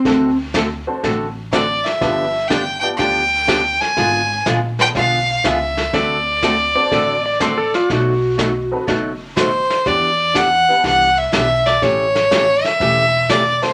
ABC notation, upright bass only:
X:1
M:4/4
L:1/8
Q:"Swing" 1/4=122
K:Dmix
V:1 name="Upright bass" clef=bass
D,,4 A,,,4 | G,,,4 D,,4 | ^G,,,2 _B,,,2 =B,,,2 ^C,,2 | D,,4 A,,,4 |
B,,,4 F,,,4 | E,,4 C,,2 B,,,2 | A,,,4 E,,,4 |]